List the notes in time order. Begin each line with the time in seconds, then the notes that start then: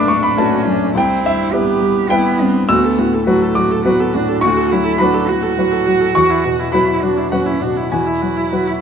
Already playing: B1 F#2 A3 D4 B4 F#5 B5 D6
0.08 A3 C#6
0.23 B5
0.37 A3 C#4 D4 F#4 B4 A5
0.66 F#2 D4
0.95 C2 C4 E4 G5
1.24 G2 E5
1.53 G3 B3 E4 G4 B4
1.81 G3
2.10 G3 B3 E4 B4 G5
2.40 G2 C4
2.69 D2 B3 F#4 E6
2.84 A4
2.98 A2 F#4
3.13 A4
3.27 F#3 A3 F#4 B4
3.42 A4
3.55 F#3 F#4 D6
3.71 A4
3.85 F#3 B3 F#4 B4
4.00 A4
4.14 A2 D4 F#4
4.29 A4
4.41 D2 F#4 C#6
4.57 A4
4.70 F#3 E4 F#4
4.84 A4
4.98 F#3 D4 F#4 B4 B5
5.14 A4
5.28 A2 F#4
5.42 A4
5.57 F#3 F#4 B4
5.71 A4
5.86 F#3 F#4
6.01 A4
6.15 E2 F#4 C#6
6.30 E4
6.44 B2 F#4
6.59 E4
6.72 F#3 E4 F#4 B4 B5
6.88 E4
7.02 F#3 D4 F#4
7.17 E4
7.31 F#3 C#4 F#4 B4 F#5
7.46 E4
7.60 B2 D4 F#4
7.76 E4
7.92 E2 E4 F#4 G#5
8.06 E4
8.21 F#3 F#4
8.37 E4
8.52 F#3 F#4 B4
8.67 E4